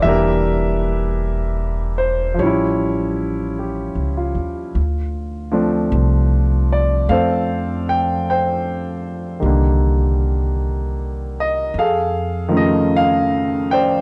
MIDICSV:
0, 0, Header, 1, 3, 480
1, 0, Start_track
1, 0, Tempo, 1176471
1, 20, Time_signature, 4, 2, 24, 8
1, 2900, Tempo, 1158301
1, 5761, End_track
2, 0, Start_track
2, 0, Title_t, "Grand piano"
2, 0, Program_c, 0, 0
2, 0, Control_c, 0, 64, 127
2, 8, Note_on_c, 0, 52, 52
2, 9, Note_on_c, 0, 76, 80
2, 14, Note_on_c, 0, 55, 45
2, 22, Note_on_c, 0, 58, 40
2, 24, Control_c, 0, 64, 0
2, 28, Note_on_c, 0, 62, 55
2, 30, Note_on_c, 0, 67, 55
2, 35, Note_on_c, 0, 70, 59
2, 102, Control_c, 0, 64, 127
2, 808, Note_on_c, 0, 72, 64
2, 833, Note_off_c, 0, 76, 0
2, 956, Note_on_c, 0, 53, 48
2, 966, Note_off_c, 0, 67, 0
2, 967, Note_off_c, 0, 55, 0
2, 968, Note_off_c, 0, 70, 0
2, 971, Note_off_c, 0, 52, 0
2, 973, Note_on_c, 0, 55, 41
2, 977, Note_on_c, 0, 73, 59
2, 978, Note_off_c, 0, 58, 0
2, 979, Note_off_c, 0, 72, 0
2, 981, Note_off_c, 0, 62, 0
2, 982, Control_c, 0, 64, 0
2, 989, Note_on_c, 0, 61, 47
2, 989, Note_on_c, 0, 67, 39
2, 990, Note_on_c, 0, 64, 42
2, 998, Note_off_c, 0, 64, 0
2, 1004, Note_on_c, 0, 64, 53
2, 1064, Control_c, 0, 64, 127
2, 1459, Note_off_c, 0, 67, 0
2, 1465, Note_on_c, 0, 67, 36
2, 1703, Note_on_c, 0, 65, 41
2, 1762, Note_off_c, 0, 73, 0
2, 1847, Note_off_c, 0, 67, 0
2, 1932, Note_off_c, 0, 53, 0
2, 1940, Note_off_c, 0, 55, 0
2, 1948, Note_off_c, 0, 61, 0
2, 1948, Control_c, 0, 64, 0
2, 1956, Note_off_c, 0, 64, 0
2, 2024, Control_c, 0, 64, 127
2, 2046, Note_off_c, 0, 65, 0
2, 2250, Note_on_c, 0, 53, 52
2, 2254, Note_on_c, 0, 57, 45
2, 2256, Note_on_c, 0, 60, 41
2, 2259, Note_on_c, 0, 62, 50
2, 2744, Note_on_c, 0, 74, 67
2, 2885, Note_off_c, 0, 57, 0
2, 2891, Note_on_c, 0, 57, 35
2, 2894, Note_on_c, 0, 77, 78
2, 2898, Note_off_c, 0, 60, 0
2, 2900, Note_on_c, 0, 69, 54
2, 2903, Note_on_c, 0, 72, 57
2, 2904, Note_on_c, 0, 60, 41
2, 2907, Note_off_c, 0, 74, 0
2, 3225, Note_off_c, 0, 77, 0
2, 3225, Note_on_c, 0, 79, 75
2, 3375, Note_off_c, 0, 79, 0
2, 3391, Note_off_c, 0, 72, 0
2, 3394, Note_on_c, 0, 79, 67
2, 3397, Note_on_c, 0, 72, 52
2, 3772, Note_off_c, 0, 79, 0
2, 3848, Note_off_c, 0, 69, 0
2, 3849, Note_on_c, 0, 51, 40
2, 3855, Note_off_c, 0, 72, 0
2, 3856, Note_on_c, 0, 55, 36
2, 3861, Note_off_c, 0, 53, 0
2, 3861, Note_off_c, 0, 57, 0
2, 3862, Note_on_c, 0, 58, 34
2, 3865, Note_off_c, 0, 62, 0
2, 3867, Note_off_c, 0, 60, 0
2, 3870, Control_c, 0, 64, 0
2, 3872, Note_on_c, 0, 50, 47
2, 3934, Control_c, 0, 64, 127
2, 4680, Note_on_c, 0, 75, 78
2, 4817, Note_off_c, 0, 51, 0
2, 4821, Note_off_c, 0, 55, 0
2, 4824, Note_off_c, 0, 58, 0
2, 4824, Note_off_c, 0, 75, 0
2, 4829, Note_off_c, 0, 50, 0
2, 4830, Control_c, 0, 64, 0
2, 4838, Note_on_c, 0, 69, 54
2, 4839, Note_on_c, 0, 77, 79
2, 4842, Note_on_c, 0, 68, 57
2, 4899, Control_c, 0, 64, 127
2, 5128, Note_on_c, 0, 51, 53
2, 5131, Note_on_c, 0, 53, 51
2, 5139, Note_on_c, 0, 57, 51
2, 5147, Note_on_c, 0, 49, 59
2, 5158, Note_off_c, 0, 77, 0
2, 5163, Note_on_c, 0, 75, 76
2, 5303, Note_off_c, 0, 75, 0
2, 5327, Note_on_c, 0, 77, 87
2, 5612, Note_off_c, 0, 77, 0
2, 5637, Note_on_c, 0, 79, 75
2, 5644, Note_on_c, 0, 72, 59
2, 5644, Note_on_c, 0, 74, 57
2, 5761, Note_off_c, 0, 49, 0
2, 5761, Note_off_c, 0, 51, 0
2, 5761, Note_off_c, 0, 53, 0
2, 5761, Note_off_c, 0, 57, 0
2, 5761, Note_off_c, 0, 68, 0
2, 5761, Note_off_c, 0, 69, 0
2, 5761, Note_off_c, 0, 72, 0
2, 5761, Note_off_c, 0, 74, 0
2, 5761, Note_off_c, 0, 79, 0
2, 5761, End_track
3, 0, Start_track
3, 0, Title_t, "Upright bass"
3, 0, Program_c, 1, 32
3, 17, Note_on_c, 1, 28, 66
3, 959, Note_off_c, 1, 28, 0
3, 974, Note_on_c, 1, 33, 69
3, 1603, Note_off_c, 1, 33, 0
3, 1613, Note_on_c, 1, 37, 54
3, 1766, Note_off_c, 1, 37, 0
3, 1774, Note_on_c, 1, 39, 61
3, 1927, Note_off_c, 1, 39, 0
3, 1938, Note_on_c, 1, 38, 64
3, 2404, Note_off_c, 1, 38, 0
3, 2415, Note_on_c, 1, 36, 76
3, 2880, Note_off_c, 1, 36, 0
3, 2892, Note_on_c, 1, 41, 75
3, 3844, Note_off_c, 1, 41, 0
3, 3860, Note_on_c, 1, 36, 67
3, 4806, Note_off_c, 1, 36, 0
3, 4819, Note_on_c, 1, 41, 69
3, 5759, Note_off_c, 1, 41, 0
3, 5761, End_track
0, 0, End_of_file